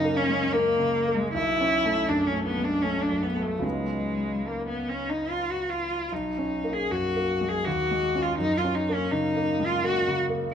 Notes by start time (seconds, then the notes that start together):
Already playing: F#2 C#3 A#3 C#4 D#4
0.04 A#3
0.16 C#4
0.30 G#3
0.53 A#3
0.79 C#3
1.08 A#3
1.14 G#3
1.33 B1 E4
1.61 C#4
1.85 A3
2.08 F#2 D4
2.26 C#4
2.32 A3
2.45 B3
2.58 G#3
2.64 D4
2.82 A3 C#4
3.02 D4
3.10 F#2
3.22 B3
3.36 A3
3.42 A3
3.59 C#2 F#3 B3 C#4
3.63 G#3 D#4
4.47 A#3
4.67 B3
4.88 C#4
5.09 D#4
5.29 F4
5.50 F#4
5.69 F4
6.12 B1 D#4
6.39 C#4
6.64 A#3
6.73 G#4
6.91 F#2 F#4
7.16 A#3
7.41 G#3
7.48 G#4
7.65 D#2 F#4
7.91 G#3
8.15 C#4 F4
8.22 F4
8.38 F#2 D#4
8.58 F4
8.64 C#4
8.75 D#4
8.89 A#3
8.95 C#4
9.11 C#3 D#4
9.36 A#3
9.60 G#3
9.66 F4
9.84 A#3 F#4
10.08 C#3
10.30 A#3